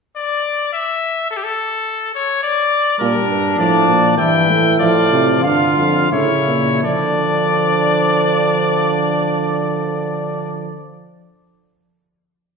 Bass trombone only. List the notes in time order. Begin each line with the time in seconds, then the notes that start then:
3.00 A#2
3.29 G2
3.58 A2
3.88 A#2
4.18 G2
4.49 A2
4.80 A2
5.44 G2
5.77 F2
6.12 A2
6.47 A#2
6.83 D3